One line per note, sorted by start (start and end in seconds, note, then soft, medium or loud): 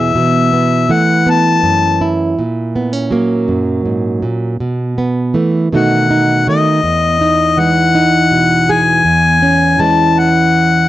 0.00 0.16 E2 medium
0.00 0.11 B2 medium
0.00 0.89 E3 medium
0.00 0.12 G#3 medium
0.00 0.52 B3 medium
0.00 0.12 G#4 medium
0.00 0.94 E5 medium
0.15 0.90 B2 medium
0.53 1.25 B3 medium
0.89 2.42 E3 medium
0.89 2.34 A3 medium
0.89 1.31 F#5 medium
1.27 2.39 B3 medium
1.27 2.13 A5 medium
1.63 2.34 F#2 medium
2.01 4.61 E4 medium
2.39 4.21 A#2 medium
2.76 2.93 B3 medium
2.93 4.61 C#4 soft
3.11 4.56 F#3 medium
3.11 4.56 A#3 medium
3.48 3.85 F#2 medium
3.85 4.23 G#2 medium
4.22 4.60 A#2 medium
4.60 5.35 B2 medium
4.98 5.74 B3 medium
5.34 5.68 E3 medium
5.34 5.68 A3 medium
5.72 6.47 B2 medium
5.72 6.46 D#3 medium
5.72 6.47 A3 medium
5.72 6.09 D#4 medium
5.72 6.81 F#4 medium
5.72 6.44 F#5 medium
6.11 6.80 D#4 medium
6.47 6.80 D#3 medium
6.47 6.80 A3 soft
6.47 7.61 D#5 medium
6.83 9.04 E2 medium
7.21 7.94 D#4 medium
7.58 9.79 E3 medium
7.58 9.02 G#3 medium
7.58 8.73 F#5 loud
7.95 9.02 D#4 medium
8.31 9.01 B2 medium
8.69 9.02 G#4 medium
8.69 9.83 G#5 loud
9.05 10.89 E2 medium
9.43 10.89 C#4 medium
9.79 10.89 E3 medium
9.79 10.89 G#3 medium
9.79 10.21 A5 medium
10.19 10.89 F#5 medium